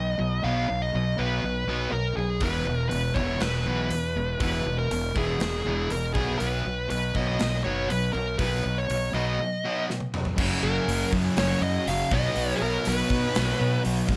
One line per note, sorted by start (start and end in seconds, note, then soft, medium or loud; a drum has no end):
0.00 0.17 B1 medium
0.00 0.16 B2 medium
0.00 0.16 F#3 medium
0.00 0.47 D#5 medium
0.18 0.42 B1 medium
0.18 0.40 B2 medium
0.18 0.41 F#3 medium
0.43 0.67 B1 medium
0.43 0.66 B2 medium
0.43 0.67 F#3 medium
0.43 0.67 B3 medium
0.43 0.82 F5 loud
0.68 0.93 B1 medium
0.68 0.90 B2 medium
0.68 0.91 F#3 medium
0.82 1.20 D#5 medium
0.92 1.17 B1 medium
0.92 1.15 B2 medium
0.92 1.15 F#3 medium
1.17 1.42 B1 medium
1.17 1.41 B2 medium
1.17 1.41 F#3 medium
1.17 1.41 B3 medium
1.17 1.92 B4 loud
1.42 1.67 B1 medium
1.42 1.65 B2 medium
1.42 1.66 F#3 medium
1.67 1.91 B1 medium
1.67 1.91 B2 medium
1.67 1.92 F#3 medium
1.67 1.92 B3 medium
1.92 2.16 B1 medium
1.92 2.15 B2 medium
1.92 2.15 F#3 medium
1.92 2.16 A#4 medium
2.17 2.41 B1 medium
2.17 2.40 B2 medium
2.17 2.40 F#3 medium
2.17 2.43 G#4 medium
2.41 2.66 E1 medium
2.41 2.66 E2 medium
2.41 2.66 B2 medium
2.41 2.67 E3 medium
2.41 2.88 B4 loud
2.41 kick loud
2.41 open hi-hat soft
2.66 2.90 E1 medium
2.66 2.91 E2 medium
2.66 2.91 B2 medium
2.89 3.15 E1 medium
2.89 3.15 E2 medium
2.89 3.15 B2 medium
2.89 3.17 B4 medium
2.89 open hi-hat medium
3.14 3.40 E1 medium
3.14 3.41 E2 medium
3.14 3.41 B2 medium
3.14 3.41 E3 medium
3.14 3.41 C#5 loud
3.14 kick medium
3.40 3.65 E1 medium
3.40 3.64 E2 medium
3.40 3.65 B2 medium
3.40 4.40 B4 medium
3.40 snare loud
3.40 open hi-hat soft
3.67 3.89 B1 medium
3.67 3.91 E2 medium
3.67 3.91 B2 medium
3.67 3.91 E3 loud
3.90 4.15 E2 medium
3.90 4.14 E2 medium
3.90 4.15 B2 medium
3.90 open hi-hat medium
4.16 4.40 E1 medium
4.16 4.39 E2 medium
4.16 4.39 B2 medium
4.40 4.65 E1 medium
4.40 4.65 E2 medium
4.40 4.65 B2 medium
4.40 4.66 E3 medium
4.40 4.78 B4 loud
4.40 kick loud
4.40 open hi-hat medium
4.65 4.90 E1 medium
4.65 4.89 E2 medium
4.65 4.90 B2 medium
4.79 5.17 A#4 medium
4.90 5.15 E1 medium
4.90 5.14 E2 medium
4.90 5.14 B2 medium
4.90 open hi-hat medium
5.16 5.40 E1 medium
5.16 5.40 E2 medium
5.16 5.40 B2 medium
5.16 5.41 E3 medium
5.16 5.91 G#4 loud
5.16 kick medium
5.40 5.65 E1 medium
5.40 5.64 E2 medium
5.40 5.64 B2 medium
5.40 snare loud
5.40 open hi-hat medium
5.65 5.90 E1 medium
5.65 5.89 E2 medium
5.65 5.89 B2 medium
5.65 5.90 E3 medium
5.90 6.15 E1 medium
5.90 6.13 E2 medium
5.90 6.13 B2 medium
5.90 6.13 A#4 medium
5.90 open hi-hat soft
6.14 6.39 B1 medium
6.14 6.39 B2 medium
6.14 6.40 F#3 medium
6.14 6.40 B3 loud
6.14 6.38 G#4 medium
6.14 kick loud
6.39 6.65 B1 medium
6.39 6.64 B2 medium
6.39 6.65 F#3 medium
6.39 6.65 B3 medium
6.39 6.89 B4 loud
6.39 open hi-hat soft
6.66 6.90 B1 medium
6.66 6.88 B2 medium
6.66 6.89 F#3 medium
6.90 7.14 B1 medium
6.90 7.14 B2 medium
6.90 7.14 F#3 medium
6.90 7.14 B4 medium
6.90 open hi-hat medium
7.15 7.39 B1 medium
7.15 7.39 B2 medium
7.15 7.40 F#3 medium
7.15 7.40 B3 medium
7.15 7.26 D#5 medium
7.15 kick medium
7.28 7.63 D#5 medium
7.39 7.65 B1 medium
7.39 7.63 B2 medium
7.39 7.63 F#3 medium
7.39 snare loud
7.39 open hi-hat soft
7.64 7.89 F#1 medium
7.64 7.89 B2 medium
7.64 7.89 F#3 medium
7.64 7.90 B3 medium
7.64 7.90 C#5 medium
7.89 8.14 B1 medium
7.89 8.13 B2 medium
7.89 8.13 F#3 medium
7.89 8.13 B4 medium
7.89 open hi-hat soft
8.13 8.39 B1 medium
8.13 8.38 B2 medium
8.13 8.38 F#3 medium
8.13 8.38 A#4 medium
8.39 8.63 B1 medium
8.39 8.63 B2 medium
8.39 8.64 F#3 medium
8.39 8.64 B3 medium
8.39 8.78 B4 medium
8.39 kick loud
8.39 open hi-hat medium
8.65 8.89 B1 medium
8.65 8.87 B2 medium
8.65 8.87 F#3 medium
8.78 9.14 C#5 medium
8.90 9.13 B1 medium
8.90 9.13 B2 medium
8.90 9.13 F#3 medium
8.90 open hi-hat medium
9.14 9.38 B1 medium
9.14 9.38 B2 medium
9.14 9.38 F#3 medium
9.14 9.38 B3 medium
9.14 9.85 D#5 medium
9.40 9.62 B2 medium
9.40 9.62 F#3 medium
9.64 9.87 B2 medium
9.64 9.88 F#3 medium
9.64 9.88 B3 medium
9.90 10.12 B2 medium
9.90 10.12 F#3 medium
9.90 snare medium
10.00 high tom medium
10.14 10.36 B2 medium
10.14 10.36 F#3 medium
10.14 mid tom medium
10.25 floor tom medium
10.36 10.54 F#1 medium
10.36 10.63 F#2 medium
10.36 11.11 F#2 medium
10.36 10.63 C#3 loud
10.36 11.12 C#3 medium
10.36 12.09 F#3 medium
10.36 10.65 F#3 loud
10.36 12.09 C#4 medium
10.36 12.09 G#4 medium
10.36 kick loud
10.36 crash loud
10.42 11.14 F#3 loud
10.63 10.78 F#1 loud
10.63 10.85 F#2 medium
10.63 10.86 C#3 medium
10.63 10.88 F#3 loud
10.63 11.09 A#4 loud
10.87 11.04 F#1 medium
10.87 11.10 F#2 medium
10.87 11.12 C#3 medium
10.87 11.12 F#3 medium
10.87 open hi-hat medium
11.11 11.36 F#2 medium
11.11 11.28 F#2 medium
11.11 11.36 C#3 medium
11.11 11.37 F#3 medium
11.11 11.86 F#3 medium
11.11 kick medium
11.16 11.85 F#2 medium
11.16 11.87 C#3 medium
11.37 11.53 F#1 medium
11.37 11.60 F#2 medium
11.37 11.61 C#3 medium
11.37 11.62 F#3 loud
11.37 11.63 C#5 loud
11.37 snare loud
11.37 open hi-hat medium
11.61 11.77 F#2 medium
11.61 11.84 F#2 medium
11.61 11.86 C#3 medium
11.61 11.86 F#3 medium
11.61 11.88 D#5 loud
11.86 12.02 F#1 medium
11.86 12.10 F#2 medium
11.86 12.10 C#3 medium
11.86 12.11 C#3 medium
11.86 12.11 F#3 loud
11.86 12.13 F5 loud
11.86 open hi-hat medium
11.90 12.12 F#3 medium
12.10 12.27 B1 medium
12.10 12.34 B2 loud
12.10 12.84 B2 medium
12.10 12.35 F#3 loud
12.10 12.85 F#3 medium
12.10 14.17 B3 medium
12.10 12.36 B3 loud
12.10 14.17 F#4 medium
12.10 14.17 C#5 medium
12.10 12.57 D#5 medium
12.10 kick loud
12.15 12.86 B3 loud
12.35 12.52 B1 loud
12.35 12.60 B2 medium
12.35 12.60 F#3 loud
12.35 12.61 B3 loud
12.35 open hi-hat medium
12.56 12.62 G#4 medium
12.61 12.77 B1 medium
12.61 12.83 B2 medium
12.61 12.85 F#3 medium
12.61 12.85 B3 medium
12.61 12.88 A#4 medium
12.85 13.02 B1 loud
12.85 13.07 B2 medium
12.85 13.59 B2 medium
12.85 13.08 F#3 medium
12.85 13.59 F#3 medium
12.85 13.09 B3 loud
12.85 13.82 B4 medium
12.85 open hi-hat medium
12.89 13.57 B3 medium
13.09 13.33 B2 medium
13.09 13.26 B2 loud
13.09 13.34 F#3 medium
13.09 13.34 B3 loud
13.09 kick medium
13.34 13.52 B1 medium
13.34 13.57 B2 medium
13.34 13.58 F#3 medium
13.34 13.59 B3 loud
13.34 snare loud
13.34 open hi-hat medium
13.58 13.81 B2 medium
13.58 13.76 B2 loud
13.58 13.82 F#3 medium
13.58 14.08 F#3 medium
13.58 14.07 B3 medium
13.58 13.83 B3 medium
13.62 14.09 B2 medium
13.82 14.01 B1 medium
13.82 14.06 B2 medium
13.82 14.07 F#3 medium
13.82 14.08 B3 medium
13.82 open hi-hat medium
14.07 14.17 G#2 medium
14.07 14.17 B2 medium
14.07 14.17 F#3 medium
14.07 14.17 B3 medium
14.07 kick medium